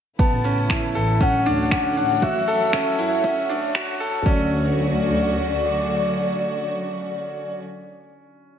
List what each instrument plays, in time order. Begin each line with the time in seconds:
0.18 string section C#3 E3 A3 B3 E4, grand piano B3, soft synth lead A5, kick, shaker
0.32 double bass section A1
0.44 double bass section A1, grand piano C#4, shaker
0.57 shaker
0.70 grand piano E4, finger snap, kick, shaker
0.95 double bass section A1, grand piano A4, shaker
1.21 string section D3 F#3 F#4 C#5, grand piano C#4, soft synth lead F#5, kick, shaker
1.46 double bass section D2, grand piano D4, shaker
1.71 grand piano C#4, soft synth lead F#5, finger snap, kick, shaker
1.97 double bass section A1, grand piano D4, shaker
2.10 shaker
2.22 string section E3, grand piano F#4, soft synth lead E5, kick, shaker
2.35 double bass section F#2
2.48 double bass section F#2, grand piano A4, shaker
2.60 shaker
2.73 grand piano C#4, finger snap, kick, shaker
2.99 double bass section F#2, grand piano E4, shaker
3.24 string section D3, grand piano C#4, kick, shaker
3.49 double bass section D2, grand piano D4, shaker
3.75 grand piano F#4, finger snap, kick, shaker
4.00 double bass section A1, grand piano A4, shaker
4.13 shaker
4.26 double bass section D2, string section C#3 D3 F#3 A3 F#4, grand piano C#4, soft synth lead D5, kick